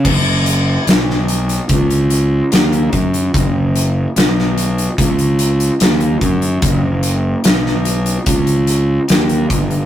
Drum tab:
CC |x---------------|----------------|----------------|
HH |--x-x-xxxxx-xxxx|x-x-x-xxxxxxxxxx|x-x-x-xxxxx-xxxx|
SD |----oo------o---|----oo------o---|----oo------o---|
BD |o-------o-----o-|o-------o-----o-|o-------o-----o-|